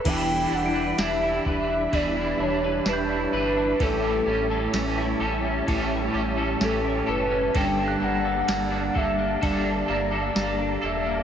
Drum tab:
CC |x-------|--------|--------|
RD |x-x-x-x-|x-x-x-x-|x-x-x-x-|
TB |--x---x-|--x---x-|--x---x-|
SD |--o---o-|--o---o-|--o---o-|
BD |o--oo---|o---o---|o--oo---|